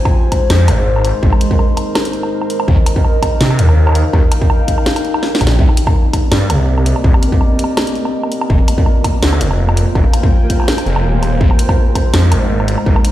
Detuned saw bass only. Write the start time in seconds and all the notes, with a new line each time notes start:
0.50 F2
0.68 G#1
1.23 G#1
2.68 D#2
3.41 C3
3.59 D#2
4.13 D#2
5.41 A#1
5.59 C2
6.31 G2
6.49 C2
7.04 C2
8.50 F1
9.23 D2
9.41 F1
9.95 F1
10.86 F1
11.04 D#1
11.41 G#1
12.14 F2
12.32 G#1
12.86 G#1